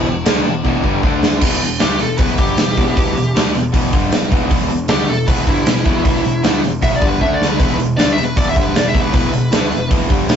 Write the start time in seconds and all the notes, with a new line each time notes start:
0.06 E1 E2 B2
0.26 D2 D3 A3 D4, snare, crash
0.46 E1 E2 B2
0.64 E1 E2 B2 E3, kick
0.84 G1 G2 D3 G3, kick
1.03 D2 D3 A3 D4, kick
1.23 snare
1.41 E1 E2 B2 E3, kick, crash
1.61 E1 E2 B2, open hi-hat
1.79 D2 D3 A3 D4 G4, snare, open hi-hat
1.99 E1 E2 B2 A4, open hi-hat
2.18 E1 E2 B2 E3 B4, kick, open hi-hat
2.38 G1 G2 D3 G3 G4, kick, open hi-hat
2.57 E1 E2 B2, snare, open hi-hat
2.77 E1 E2 B2 E3, kick, open hi-hat
2.97 E1 E2 B2 E3, kick, open hi-hat
3.17 E1 E2 B2, open hi-hat
3.35 D2 D3 A3 D4, snare, open hi-hat
3.55 E1 E2 B2, open hi-hat
3.73 E1 E2 B2 E3, kick, open hi-hat
3.93 G1 G2 D3 G3, kick, open hi-hat
4.12 E1 E2 B2, snare, open hi-hat
4.32 E1 E2 B2 E3, kick, open hi-hat
4.51 E1 E2 B2 E3, kick, open hi-hat
4.70 E1 E2 B2, open hi-hat
4.88 D2 D3 A3 G4, snare, open hi-hat
4.92 D4
5.07 E1 E2 B2 A4, open hi-hat
5.12 B2
5.27 E1 E2 B2 E3 B4, kick, open hi-hat
5.47 G1 G2 D3 G3 E4, kick, open hi-hat
5.66 E1 E2 B2, snare, open hi-hat
5.85 E1 E2 B2 E3, kick, open hi-hat
6.05 E1 E2 B2 E3, kick, open hi-hat
6.25 E1 E2 B2, open hi-hat
6.43 D2 D3 A3 D4, snare, open hi-hat
6.63 E1 E2 B2, open hi-hat
6.82 E1 E2 B2 E3 E5, kick, open hi-hat
6.96 D5
7.02 G1 G2 D3 G3, kick, open hi-hat
7.07 B4
7.21 D2 D3 A3 D4 E5, kick
7.34 D5
7.42 snare
7.47 B4
7.59 E1 E2 B2 E3 B4, kick, open hi-hat
7.78 E1 E2 B2, open hi-hat
7.97 D2 D3 A3 D4 D5, snare, open hi-hat
8.12 E5
8.17 E1 E2 B2, open hi-hat
8.24 B4
8.36 E1 E2 B2 E3 D5, kick, open hi-hat
8.50 E5
8.56 G1 G2 D3 G3, kick, open hi-hat
8.63 B4
8.75 E1 E2 B2 D5, snare, open hi-hat
8.88 E5
8.94 E1 E2 B2 E3, kick, open hi-hat
9.01 B4
9.13 E1 E2 B2 E3 B4, kick, open hi-hat
9.33 E1 E2 B2, open hi-hat
9.52 D2 D3 A3 D4, snare, open hi-hat
9.71 E1 E2 B2, open hi-hat
9.91 E1 E2 B2 E3, kick, open hi-hat
10.10 G1 G2 D3 G3, kick, open hi-hat
10.29 E1 E2 B2, snare, open hi-hat